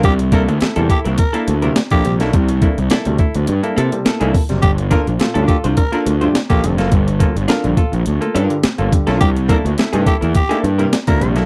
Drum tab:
HH |xxxxxxxxxxxxxxxx|xxxxxxxxxxxxxxox|xxxxxxxxxxxxxxxx|xxxxxxxxxxxxxxxx|
SD |----o-------o--o|----o-------o--o|----o-------o--o|----o-------o--o|
BD |o-o---o-o----o--|o-o---o-------o-|o-o---o-o----o--|o-o---o-------o-|

HH |xxxxxxxxxxxxxxxx|
SD |----o-------o--o|
BD |o-o---o-o----o--|